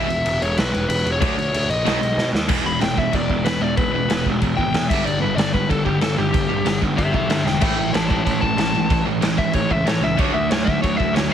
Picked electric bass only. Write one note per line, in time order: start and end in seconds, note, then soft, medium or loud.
0.08 0.24 E1 medium
0.25 0.40 E1 loud
0.42 0.56 E1 medium
0.58 0.73 B1 medium
0.74 0.88 E1 loud
0.89 1.04 E1 loud
1.04 1.20 E1 medium
1.21 1.36 D2 loud
1.37 1.52 D2 medium
1.54 1.68 D2 loud
1.69 1.84 A#1 medium
1.85 2.00 B1 loud
2.02 2.17 B1 medium
2.17 2.32 B2 loud
2.33 2.48 D#2 loud
2.49 2.62 E1 medium
2.64 2.77 E1 medium
2.81 3.07 E1 loud
3.13 3.26 E1 medium
3.29 3.42 E1 medium
3.45 3.58 E1 loud
3.60 3.73 E1 medium
3.78 3.90 E1 medium
3.93 4.06 E1 medium
4.09 4.22 E1 loud
4.26 4.38 E1 medium
4.41 4.54 E1 loud
4.58 4.71 G#1 medium
4.74 4.87 E2 medium
4.91 5.03 G1 medium
5.05 5.18 G1 loud
5.21 5.34 G1 medium
5.36 5.62 G1 loud
5.69 5.82 G1 loud
5.86 5.99 G1 medium
6.01 6.14 G1 loud
6.18 6.31 G1 medium
6.33 6.46 G1 medium
6.49 6.62 G1 medium
6.65 6.78 G1 medium
6.82 6.95 G1 loud
6.98 7.11 G1 medium
7.14 7.27 B1 medium
7.29 7.42 G2 medium
7.44 7.58 E1 medium
7.62 7.75 A1 medium
7.77 7.90 A1 medium
7.93 8.19 A1 loud
8.26 8.39 A1 medium
8.42 8.55 A1 medium
8.56 8.70 A1 medium
8.73 8.87 A1 medium
8.90 9.03 A1 loud
9.05 9.19 A1 medium
9.22 9.35 A1 loud
9.38 9.52 A1 loud
9.54 9.67 A1 loud
9.70 9.83 C#2 medium
9.85 9.99 A2 loud
10.01 10.15 C#2 medium
10.19 10.32 D2 loud
10.33 10.47 D2 medium
10.50 10.77 D2 loud
10.83 10.96 D2 loud
11.00 11.13 D2 medium
11.14 11.27 D2 loud
11.31 11.34 D2 medium